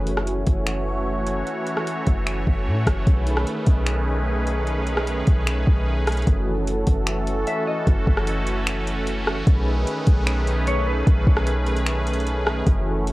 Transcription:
Already playing: 808-style bass F#1, analog synth pad E3 A3 C#4 F#4 C#5, synth texture A3 F#4 E5
0.07 closed hi-hat
0.17 cross-stick
0.27 closed hi-hat
0.47 808-style bass F#1, kick, closed hi-hat
0.67 finger snap, closed hi-hat
1.27 closed hi-hat
1.47 closed hi-hat
1.67 closed hi-hat
1.77 cross-stick
1.87 closed hi-hat
2.07 808-style bass F#1, kick, closed hi-hat
2.27 finger snap, closed hi-hat
2.47 808-style bass F#1, kick
2.67 808-style bass A2
2.87 808-style bass F#1, kick, cross-stick, closed hi-hat
3.07 808-style bass B1, analog synth pad D#3 C#4 G#4 B4, synth texture A3 G#4 C#5 D#5, kick, closed hi-hat
3.27 closed hi-hat
3.37 cross-stick
3.47 closed hi-hat
3.67 808-style bass B1, kick, closed hi-hat
3.87 finger snap, closed hi-hat
4.47 closed hi-hat
4.67 closed hi-hat
4.87 closed hi-hat
4.97 cross-stick
5.07 closed hi-hat
5.27 808-style bass B1, kick, closed hi-hat
5.47 finger snap, closed hi-hat
5.67 808-style bass B1, kick
6.07 cross-stick, closed hi-hat
6.12 closed hi-hat
6.17 closed hi-hat
6.22 closed hi-hat
6.27 808-style bass F#1, analog synth pad E3 A3 C#4 F#4 A4, kick, closed hi-hat
6.67 closed hi-hat
6.87 808-style bass F#1, kick, closed hi-hat
7.07 finger snap, closed hi-hat
7.27 closed hi-hat
7.47 clean electric guitar E5, closed hi-hat
7.67 clean electric guitar D#5
7.87 808-style bass F#1, kick, closed hi-hat
8.07 808-style bass F#1, kick
8.17 cross-stick
8.27 closed hi-hat
8.47 closed hi-hat
8.67 finger snap, closed hi-hat
8.87 closed hi-hat
9.07 closed hi-hat
9.27 cross-stick
9.47 808-style bass B1, analog synth pad D#3 G#4 B4, kick, closed hi-hat
9.87 closed hi-hat
10.07 808-style bass B1, kick, closed hi-hat
10.27 finger snap, closed hi-hat
10.47 closed hi-hat
10.67 clean electric guitar C#5, closed hi-hat
10.87 clean electric guitar B4
11.07 808-style bass B1, kick, closed hi-hat
11.27 808-style bass B1, kick
11.37 cross-stick
11.47 closed hi-hat
11.67 closed hi-hat
11.77 closed hi-hat
11.87 finger snap, closed hi-hat
12.07 closed hi-hat
12.14 closed hi-hat
12.20 closed hi-hat
12.27 closed hi-hat
12.47 cross-stick
12.67 808-style bass F#1, analog synth pad E3 F#4 A4, synth texture A3 F#4 E5, kick, closed hi-hat
13.07 closed hi-hat

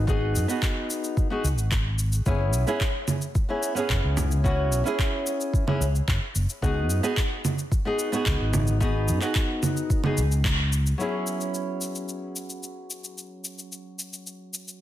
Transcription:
Already playing: fretless electric bass G#1
0.07 nylon-string guitar B3 D#4 F#4 G#4, kick, shaker
0.35 fretless electric bass F#2, shaker
0.48 nylon-string guitar B3 D#4 F#4 G#4, shaker
0.62 kick, clap, shaker
0.90 shaker
1.04 shaker
1.17 kick, shaker
1.30 nylon-string guitar B3 D#4 F#4 G#4
1.44 fretless electric bass C#2, shaker
1.58 fretless electric bass G#1, shaker
1.72 kick, clap, shaker
1.99 shaker
2.12 shaker
2.26 fretless electric bass F#1, nylon-string guitar B3 C#4 E4 G#4, kick, shaker
2.54 fretless electric bass B1, shaker
2.67 nylon-string guitar B3 C#4 E4 G#4, shaker
2.81 kick, clap, shaker
3.08 low conga, shaker
3.22 shaker
3.35 kick, shaker
3.49 nylon-string guitar B3 C#4 E4 G#4
3.63 shaker
3.75 nylon-string guitar B3 C#4 E4 G#4, shaker
3.90 fretless electric bass F#1, kick, clap, shaker
4.04 fretless electric bass C#2
4.17 low conga, shaker
4.31 shaker
4.44 nylon-string guitar B3 C#4 E4 F#4, kick, shaker
4.72 fretless electric bass B1, shaker
4.84 nylon-string guitar B3 C#4 E4 G#4, shaker
4.99 kick, clap, shaker
5.27 shaker
5.41 shaker
5.54 kick, shaker
5.67 nylon-string guitar B3 C#4 E4 G#4, low conga
5.81 fretless electric bass C#2, shaker
5.95 shaker
6.08 fretless electric bass F#1, kick, clap, shaker
6.35 fretless electric bass F#1, shaker
6.50 shaker
6.62 fretless electric bass C#2, nylon-string guitar B3 D#4 F#4 G#4, kick, shaker
6.89 fretless electric bass F#2, shaker
7.03 nylon-string guitar B3 D#4 F#4 G#4, shaker
7.17 kick, clap, shaker
7.45 low conga, shaker
7.59 shaker
7.72 kick, shaker
7.85 nylon-string guitar B3 D#4 F#4 G#4
7.99 shaker
8.12 nylon-string guitar B3 D#4 F#4 G#4, shaker
8.26 fretless electric bass C#2, kick, clap, shaker
8.40 fretless electric bass G#1
8.54 low conga, shaker
8.67 shaker
8.80 nylon-string guitar B3 D#4 F#4 G#4, kick, shaker
9.08 fretless electric bass F#2, shaker
9.21 nylon-string guitar B3 D#4 F#4 G#4, clap, shaker
9.35 kick, clap, shaker
9.63 low conga, shaker
9.77 shaker
9.90 kick, shaker
10.04 nylon-string guitar B3 D#4 F#4 G#4, low conga
10.17 fretless electric bass C#2, shaker
10.32 shaker
10.45 kick, clap, shaker
10.73 shaker
10.87 shaker
10.98 nylon-string guitar F#3 B3 C#4 E4 G#4, shaker
11.27 shaker
11.41 shaker
11.54 shaker
11.81 shaker
11.95 shaker
12.09 shaker
12.36 shaker
12.50 shaker
12.63 shaker
12.91 shaker
13.04 shaker
13.18 shaker
13.45 shaker
13.59 shaker
13.72 shaker
13.99 shaker
14.13 shaker
14.27 shaker
14.54 shaker
14.68 shaker

